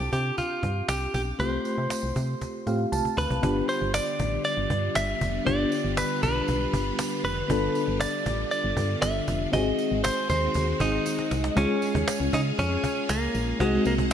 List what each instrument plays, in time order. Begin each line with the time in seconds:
Already playing: fm electric piano C4 D4 F4 G4, clean electric guitar G4
0.00 fm bass C2
0.13 fm bass C3, clean electric guitar G4, cajon bass, tambourine
0.38 clean electric guitar F4, cajon bass, cajon slap, tambourine
0.63 fm bass G2, cajon bass
0.89 fm bass C2, clean electric guitar G4, cajon slap, tambourine
1.14 fm bass B1, clean electric guitar G4, cajon bass, tambourine
1.39 fm bass C2, fm electric piano A3 C4 F4 G4, clean electric guitar C5, cajon bass, tambourine
1.65 cajon slap, tambourine
1.78 fm bass C3
1.90 cajon slap, tambourine
2.03 fm bass C2
2.16 fm bass C3, cajon bass, tambourine
2.41 cajon bass, cajon slap, tambourine
2.66 fm bass A2, fm electric piano A3 C4 F4 G4 F5, cajon slap, tambourine
2.92 fm bass C2, fm electric piano A5, cajon bass, cajon slap, tambourine
3.05 cajon bass
3.18 fm bass D2, clean electric guitar B4, cajon bass, tambourine
3.30 fm bass C2, cajon bass
3.42 fm bass G1, string machine D3 G3 B3 F4, fm electric piano B3 D4 F4 G4, cajon bass, tambourine
3.69 clean electric guitar C5, cajon slap, tambourine
3.81 fm bass G1
3.94 clean electric guitar D5, cajon slap, tambourine
4.19 fm bass A1, cajon bass, tambourine
4.44 clean electric guitar D5, cajon slap, tambourine
4.57 fm bass G1
4.70 fm bass G2, cajon bass
4.95 fm bass G1, clean electric guitar E5, cajon slap, tambourine
5.21 fm bass F1, cajon bass, tambourine
5.45 fm bass G1, fm electric piano B3 D4 F4 G4, clean electric guitar D5, cajon bass
5.72 cajon slap, tambourine
5.84 fm bass G1
5.97 clean electric guitar B4, cajon slap, tambourine
6.23 fm bass B1, clean electric guitar B4, cajon bass, tambourine
6.48 fm bass B1, cajon bass, cajon slap, tambourine
6.73 fm bass G1, cajon bass, tambourine
6.99 cajon slap, tambourine
7.24 fm bass F1, clean electric guitar B4, tambourine
7.48 fm bass G1, fm electric piano B3 D4 F4 A4, cajon bass, tambourine
7.75 cajon slap, tambourine
7.88 fm bass G1
8.00 clean electric guitar D5, cajon slap, tambourine
8.26 fm bass A1, cajon bass, tambourine
8.51 clean electric guitar D5, cajon slap, tambourine
8.64 fm bass G1
8.77 fm bass G2, cajon bass, tambourine
9.02 fm bass G1, clean electric guitar E5, cajon slap, tambourine
9.28 fm bass F1, cajon bass, tambourine
9.52 fm bass G#1, string machine D#3 G#3 C4 F#4, fm electric piano C4 D#4 F#4 G#4, clean electric guitar D#5, cajon bass, tambourine
9.79 cajon slap, tambourine
9.91 fm bass G#1
10.04 clean electric guitar C5, cajon slap, tambourine
10.29 fm bass D#2, clean electric guitar C5, cajon bass, tambourine
10.54 fm bass D#2, cajon bass, cajon slap, tambourine
10.80 fm bass G#1, fm electric piano C4 D#4 F#4 G#4, clean electric guitar D#4, cajon bass, tambourine
11.06 cajon slap, tambourine
11.19 cajon slap
11.31 fm bass C2, cajon slap, tambourine
11.44 cajon slap
11.55 fm bass C#2, fm electric piano G#3 C#4 F4 G#4, string machine C#4 F4 G#4 F5, clean electric guitar C#4, cajon bass, tambourine
11.69 cajon slap
11.82 cajon slap, tambourine
11.95 fm bass D#2, cajon bass
12.08 cajon slap, tambourine
12.20 fm bass C#2, cajon slap
12.33 fm bass C#3, clean electric guitar D#4, cajon bass, tambourine
12.46 cajon slap
12.58 fm bass F2, clean electric guitar C#4, cajon bass, cajon slap, tambourine
12.71 cajon slap
12.84 cajon bass, tambourine
12.97 cajon slap
13.09 fm bass C#2, clean electric guitar A#3, cajon slap, tambourine
13.22 cajon slap
13.35 fm bass A#1, cajon slap, tambourine
13.48 cajon slap
13.59 fm bass C2, fm electric piano G#3 C4 D#4 F#4, clean electric guitar G#3, string machine D#4 C5 F#5, cajon bass
13.85 fm bass C2, clean electric guitar A#3, tambourine
13.98 cajon bass